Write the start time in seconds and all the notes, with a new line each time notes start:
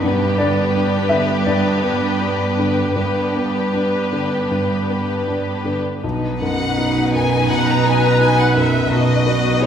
0.03 G2 B3 D4 G4 B4
0.38 D3 D5
0.75 D4
1.09 D3 E5
1.46 G2 D5
1.83 B3
2.21 D4
2.59 D3
2.96 G2 B3 D4 G4 B4
3.35 B3
3.74 D4
4.12 D3
4.51 G2
4.90 B3
5.28 D4
5.65 D3
6.03 B1 B2 D#4 B4
6.41 F#2 F#5
6.78 D#4
7.14 F#2 G#5
7.49 B1 B4 F#5
7.69 A#5
7.85 B3 G#5
8.05 A#5
8.21 D#4 G#5
8.40 F#5
8.56 F#2 E5
8.90 B1 B2 D#4 F#4 B4 D#5
9.27 B3
9.61 D#4 G#4 C#5